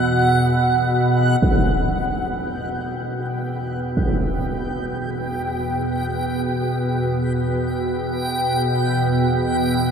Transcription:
0.00 1.41 E2 medium
0.00 1.41 B2 medium
0.00 1.45 F#5 medium
1.42 9.91 E2 medium
1.42 9.91 B2 medium
1.42 9.91 G5 medium
1.42 impact medium
3.97 impact soft

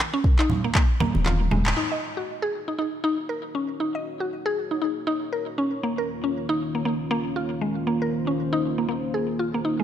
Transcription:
0.14 0.19 C#4 medium
0.24 kick loud
0.39 0.49 D#4 loud
0.39 clap medium
0.50 high conga medium
0.50 low conga medium
0.64 0.70 A#3 medium
0.75 0.83 A#3 medium
0.75 kick loud
0.75 clap medium
1.00 1.14 A#3 loud
1.00 high conga loud
1.00 low conga loud
1.15 1.48 D#1 loud
1.15 high conga loud
1.26 1.40 F4 medium
1.26 clap medium
1.26 high tom medium
1.26 high conga loud
1.41 high tom medium
1.51 1.73 D#1 loud
1.51 1.65 G#3 medium
1.51 mid tom medium
1.51 high conga medium
1.51 low conga medium
1.66 clap medium
1.66 mid tom medium
1.77 9.84 A#3 medium
1.77 1.90 D#4 medium
1.77 5.79 D#4 medium
1.77 5.80 F#4 medium
1.77 7.83 C#5 medium
1.92 2.01 D#5 medium
2.17 2.23 F#4 medium
2.42 2.52 G#4 loud
2.68 2.74 D#4 medium
2.78 2.87 D#4 medium
3.04 3.17 D#4 loud
3.29 3.43 A#4 medium
3.55 3.68 C#4 medium
3.80 3.94 D#4 medium
3.95 4.04 D#5 medium
4.20 4.26 F#4 medium
4.46 4.56 G#4 loud
4.71 4.77 D#4 medium
4.82 4.90 D#4 medium
5.07 5.21 D#4 loud
5.33 5.47 A#4 medium
5.58 5.71 C#4 medium
5.83 9.84 D#3 medium
5.83 5.97 A#3 medium
5.83 9.84 C#4 medium
5.83 9.84 F4 medium
5.98 6.08 A#4 medium
6.24 6.29 C#4 medium
6.49 6.59 D#4 loud
6.75 6.80 A#3 medium
6.85 6.93 A#3 medium
7.11 7.24 A#3 loud
7.36 7.50 F4 medium
7.61 7.75 G#3 medium
7.87 8.00 A#3 medium
7.87 9.84 C5 medium
8.02 8.11 A#4 medium
8.27 8.33 C#4 medium
8.53 8.63 D#4 loud
8.78 8.84 A#3 medium
8.89 8.97 A#3 medium
9.14 9.28 G#4 medium
9.39 9.47 F4 medium
9.54 9.60 A#3 medium
9.65 9.78 D#4 medium
9.80 9.84 G#3 medium

